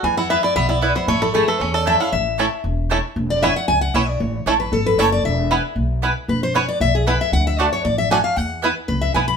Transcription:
X:1
M:4/4
L:1/8
Q:1/4=230
K:A
V:1 name="Steel-string acoustic guitar"
g f e d e d c =c | c A G B c d e =f | e4 z4 | z d e f g f e d |
c3 B A B c d | e4 z4 | B =c ^c d e G B e | f e d c d e g =f |
f2 z2 B e g b |]
V:2 name="Mandolin"
z2 [B,EBg] z3 [B,EBg] z | z2 [A,Eca] z3 [A,Eca] z | z2 [A,Eca] z3 [A,Eca] z | z2 [B,Ecg] z3 [B,Ecg] z |
z2 [A,Eca] z3 [A,Eca] z | z2 [B,EBg] z3 [B,EBg] z | z2 [B,EBg] z3 [B,EBg] z | z2 [A,Fda] z3 [A,Fda] z |
z2 [B,EBg] z3 [B,EBg] z |]
V:3 name="Five-string banjo"
E, E E E B, E E B, | A, E A, A C A C E | z2 [A,CE] z3 [A,CE] z | z2 [B,CE] z3 [B,CE] z |
z2 [A,CE] z3 [A,CE] z | z2 [B,E] z3 [B,E] z | z2 [B,E] z3 [B,E] z | z2 [A,DF] z3 [A,DF] z |
z2 [B,E] z3 [B,E] z |]
V:4 name="Upright bass" clef=bass
E,,4 B,,,4 | A,,,4 E,,4 | A,,,4 E,,,4 | E,,,4 C,,2 B,,,2 |
A,,,2 A,,,2 G,,,2 F,,,2 | E,,,4 B,,,4 | E,,,4 B,,,4 | D,,4 A,,,4 |
E,,4 C,,2 B,,,2 |]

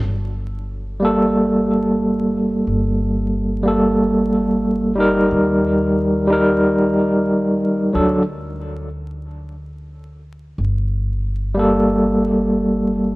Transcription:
X:1
M:4/4
L:1/8
Q:"Swing 16ths" 1/4=91
K:Gm
V:1 name="Tine electric piano"
z3 [G,B,A]4- [G,B,A]- | [G,B,A]3 [G,B,A]4 [G,EB]- | [G,EB]3 [G,EB]4- [G,EB] | [^F,DA] z6 z |
z3 [G,B,A]4- [G,B,A] |]
V:2 name="Upright bass" clef=bass
G,,,8 | G,,,8 | E,,8 | D,,8 |
G,,,8 |]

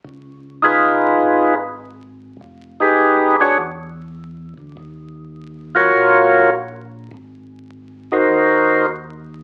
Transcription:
X:1
M:4/4
L:1/8
Q:"Swing" 1/4=102
K:Dbmix
V:1 name="Tonewheel organ"
z2 [EFAc]3 z3 | z [E=GAc]2 [=D_GA_d] z4 | z3 [FGBd]3 z2 | z3 [EGB=c]3 z2 |]
V:2 name="Tonewheel organ" clef=bass
D,,4 A,,,4 | F,,,4 =E,,3 =D,, | E,,4 B,,,4 | A,,,4 E,,4 |]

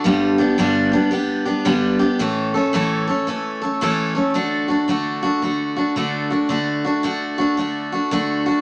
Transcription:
X:1
M:4/4
L:1/8
Q:"Swing" 1/4=111
K:D
V:1 name="Steel-string acoustic guitar"
[G,,D,G,B,DG] [G,B,DG] [G,,D,G,B,DG] [G,B,DG] [G,B,DG] [G,B,DG] [G,,D,G,B,DG] [G,B,DG] | [A,,E,A,CA] [A,CA] [A,,E,A,CA] [A,CA] [E,A,CA] [A,CA] [A,,E,A,CA] [A,CA] | [D,A,DF] [A,DF] [D,A,DF] [A,DF] [D,A,DF] [A,DF] [D,A,DF] [A,DF] | [D,A,DF] [A,DF] [D,A,DF] [A,DF] [D,A,DF] [A,DF] [D,A,DF] [A,DF] |]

